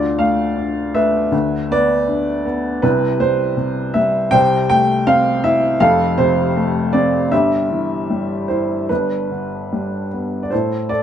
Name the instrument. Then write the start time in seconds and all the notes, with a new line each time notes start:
upright piano
Already playing: D2 D3 F4 D5
0.19 A3 F5
0.56 D4
0.94 A3 B4 E5
1.32 D2 D3
1.70 B3 B4 D5
2.08 D4
2.45 B3
2.82 C2 C3 E4 B4
3.20 G3 C5
3.57 C3
3.94 G3 E5
4.31 C2 C3 C5 G5
4.70 A3 G5
5.07 C4 F5
5.44 E4 E5
5.80 F1 F2 A4 F5
6.18 C3 C5
6.57 A3
6.93 C4 D5
7.32 G1 G2 G4 E5
7.71 E3
8.10 G3
8.48 E4 C5
8.89 G1 G2 D4 B4
9.31 D3
9.72 G3
10.13 B3
10.43 D5
10.50 A2 E4 A4 C5
10.89 A4 D5